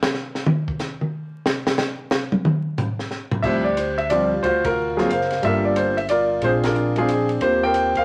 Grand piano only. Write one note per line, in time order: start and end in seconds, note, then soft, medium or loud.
3.42 3.63 F3 medium
3.42 3.63 G3 medium
3.42 3.64 C4 soft
3.42 3.64 E4 medium
3.42 3.95 G4 medium
3.42 3.75 C5 medium
3.42 3.65 E5 medium
3.64 3.76 D5 medium
3.77 3.99 C5 medium
3.98 4.10 E5 medium
4.10 4.29 F3 medium
4.10 4.30 G3 medium
4.10 4.30 C4 medium
4.10 4.42 F4 medium
4.10 4.42 G4 medium
4.10 4.44 D5 medium
4.43 4.66 F4 medium
4.43 4.66 F#4 medium
4.43 4.63 C5 medium
4.65 4.98 F4 medium
4.65 5.08 F#4 medium
4.65 4.96 A#4 medium
4.97 5.08 F#3 medium
4.97 5.08 A#3 medium
4.97 5.09 C4 medium
4.97 5.09 F4 medium
4.97 5.08 G#4 medium
5.09 5.41 A#4 medium
5.09 5.42 C5 medium
5.09 5.40 F5 medium
5.42 5.92 G3 medium
5.42 5.93 A#3 medium
5.42 5.93 D4 medium
5.42 5.93 F4 medium
5.42 5.63 E5 medium
5.46 5.95 A4 medium
5.46 5.95 A#4 medium
5.65 5.76 D5 medium
5.77 5.96 C5 medium
5.97 6.02 E5 medium
6.10 6.41 F4 medium
6.10 6.41 A#4 medium
6.10 6.40 D5 loud
6.42 6.92 G#3 soft
6.42 6.92 C4 soft
6.42 6.65 D4 medium
6.42 6.64 F4 medium
6.42 6.49 C5 loud
6.46 6.95 G#4 medium
6.64 6.96 D4 medium
6.64 6.97 F4 medium
6.64 6.98 A#4 medium
6.97 7.07 G#3 medium
6.97 6.99 C4 medium
6.97 6.99 D4 medium
6.97 7.40 D4 medium
6.97 7.08 F4 medium
6.97 7.28 G#4 loud
7.01 7.40 C4 medium
7.42 7.91 A#3 medium
7.42 7.92 C4 medium
7.42 7.92 F4 soft
7.42 7.92 G4 medium
7.42 7.63 C5 loud
7.63 7.96 A#4 medium
7.63 7.97 C5 medium
7.63 7.97 G5 loud
7.97 8.05 A#4 medium
7.97 8.05 C5 medium
7.97 8.05 F5 loud